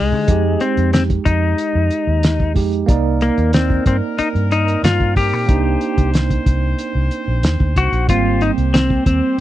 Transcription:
0.00 0.14 C2 medium
0.00 0.23 G#3 medium
0.00 0.63 G#3 medium
0.00 0.24 D#4 medium
0.00 0.25 G4 medium
0.12 0.25 D3 medium
0.27 0.55 F2 medium
0.27 2.51 G#3 medium
0.27 2.52 D#4 medium
0.27 2.53 G4 medium
0.27 kick loud
0.27 closed hi-hat medium
0.60 0.91 C4 medium
0.60 closed hi-hat medium
0.77 1.17 F2 medium
0.77 closed hi-hat soft
0.93 1.02 C4 medium
0.93 snare loud
0.93 closed hi-hat medium
1.10 kick medium
1.10 closed hi-hat soft
1.25 1.53 F2 loud
1.25 2.52 D#4 medium
1.25 kick medium
1.25 closed hi-hat medium
1.58 closed hi-hat medium
1.75 1.88 F2 medium
1.91 closed hi-hat medium
2.07 2.56 D#2 medium
2.23 snare loud
2.23 closed hi-hat medium
2.40 kick medium
2.54 2.83 F2 medium
2.54 2.88 G#3 medium
2.54 2.88 D#4 medium
2.54 2.89 G4 medium
2.54 kick medium
2.54 open hi-hat medium
2.73 closed hi-hat soft
2.86 3.29 C2 medium
2.86 5.43 A#3 medium
2.86 8.04 C4 medium
2.86 5.45 D#4 medium
2.86 5.46 A#4 medium
2.86 5.44 D5 medium
2.86 kick loud
2.86 closed hi-hat medium
3.21 3.52 A#3 medium
3.21 closed hi-hat medium
3.38 3.78 D#2 medium
3.38 closed hi-hat soft
3.53 3.86 C4 medium
3.53 snare loud
3.53 closed hi-hat medium
3.70 kick medium
3.86 4.00 G2 medium
3.86 3.96 C4 medium
3.86 kick medium
3.86 closed hi-hat medium
4.18 4.27 D#4 medium
4.18 muted fingered electric bass stroke soft
4.18 closed hi-hat medium
4.35 4.75 G2 medium
4.35 closed hi-hat soft
4.51 4.84 D#4 medium
4.51 closed hi-hat medium
4.68 closed hi-hat soft
4.83 5.33 G2 medium
4.83 5.14 F4 loud
4.83 snare loud
4.83 closed hi-hat medium
5.00 kick medium
5.16 6.10 G4 loud
5.16 kick medium
5.16 open hi-hat medium
5.33 5.46 A#2 medium
5.46 5.75 C2 medium
5.46 8.03 A#3 medium
5.46 8.04 D4 medium
5.46 8.05 D#4 medium
5.46 8.06 C5 medium
5.46 kick loud
5.46 closed hi-hat medium
5.81 closed hi-hat medium
5.97 6.37 C2 medium
5.97 kick medium
5.97 closed hi-hat soft
6.14 snare loud
6.14 closed hi-hat medium
6.30 kick medium
6.30 closed hi-hat soft
6.46 6.73 C2 medium
6.46 kick medium
6.46 closed hi-hat medium
6.79 closed hi-hat medium
6.95 7.08 C2 medium
7.11 closed hi-hat medium
7.28 7.42 A#1 medium
7.43 7.58 D#2 medium
7.43 snare loud
7.43 closed hi-hat medium
7.60 7.74 D2 medium
7.60 kick medium
7.76 7.91 C2 medium
7.76 8.09 F#4 medium
7.76 kick medium
7.76 closed hi-hat medium
7.92 8.07 A#1 medium
7.92 closed hi-hat soft
8.07 8.49 G#1 medium
8.07 9.40 G3 medium
8.07 9.40 A#3 medium
8.07 9.40 C4 medium
8.07 8.42 F4 medium
8.07 9.40 G4 medium
8.07 9.40 C5 medium
8.07 kick loud
8.07 closed hi-hat medium
8.41 8.51 D#4 medium
8.41 closed hi-hat medium
8.58 8.97 C2 medium
8.58 closed hi-hat soft
8.74 9.06 C4 medium
8.74 snare loud
8.74 closed hi-hat medium
8.90 kick medium
9.06 9.20 D#2 medium
9.06 9.37 C4 medium
9.06 kick medium
9.06 closed hi-hat medium

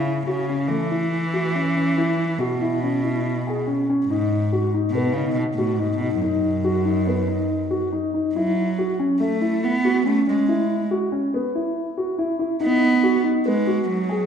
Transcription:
0.00 0.24 C#3 medium
0.00 0.15 E4 medium
0.27 0.70 C#3 medium
0.27 0.42 F#4 medium
0.49 0.64 C#4 medium
0.68 2.39 E3 medium
0.68 0.85 A3 medium
0.91 1.21 E4 soft
1.34 1.49 F#4 medium
1.55 1.70 C#4 medium
1.76 1.91 C#4 medium
1.98 2.28 E4 medium
2.38 3.88 B2 medium
2.38 2.55 F#4 medium
2.62 2.76 E4 medium
2.83 2.98 C#4 medium
3.04 3.34 E4 medium
3.47 3.62 G#4 medium
3.67 3.82 C#4 medium
3.90 4.04 C#4 medium
4.06 4.68 G#2 medium
4.10 4.40 D#4 medium
4.53 4.68 F#4 medium
4.74 4.89 D#4 medium
4.91 5.14 B2 medium
4.95 5.10 B3 medium
5.13 5.32 C#3 medium
5.13 5.46 D#4 medium
5.33 5.44 B2 medium
5.55 5.79 A2 medium
5.55 5.73 F#4 medium
5.77 5.97 G#2 medium
5.77 5.94 D#4 medium
5.98 6.19 B2 medium
5.98 6.16 D#4 medium
6.20 7.87 F#2 medium
6.20 6.52 D#4 medium
6.64 6.80 F#4 medium
6.85 7.01 D#4 medium
7.07 7.22 B3 medium
7.28 7.58 D#4 medium
7.71 7.86 F#4 medium
7.92 8.08 D#4 medium
8.14 8.29 D#4 medium
8.35 8.95 F#3 medium
8.35 8.66 E4 medium
8.78 8.93 F#4 medium
8.99 9.14 C#4 medium
9.20 9.65 A3 medium
9.20 9.35 A3 medium
9.41 9.71 E4 medium
9.63 10.06 B3 medium
9.85 9.99 F#4 medium
10.06 10.26 A3 medium
10.06 10.21 C#4 medium
10.27 10.87 G#3 medium
10.27 10.42 C#4 medium
10.49 10.78 E4 medium
10.91 11.06 F#4 medium
11.12 11.27 C#4 medium
11.34 11.49 B3 medium
11.55 11.85 E4 medium
11.97 12.12 F#4 medium
12.19 12.33 E4 medium
12.39 12.54 E4 medium
12.60 13.21 B3 medium
12.60 12.90 D#4 medium
13.03 13.18 F#4 medium
13.24 13.39 D#4 medium
13.46 13.86 G#3 medium
13.46 13.61 B3 medium
13.67 13.97 F#4 medium
13.89 14.26 F#3 medium
14.09 14.24 G#4 medium

